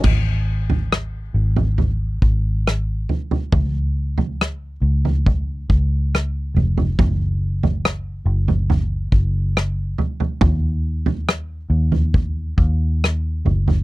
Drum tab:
CC |x---------------|----------------|----------------|----------------|
SD |----r-------r---|----r-------r---|----r-------r---|----r-------r---|
FT |o--o---oo-----oo|o--o---oo-----oo|o--o---oo-----oo|o--o---oo-----oo|
BD |o---------o-----|o-------o-o-----|o---------o-----|o-------o-o-----|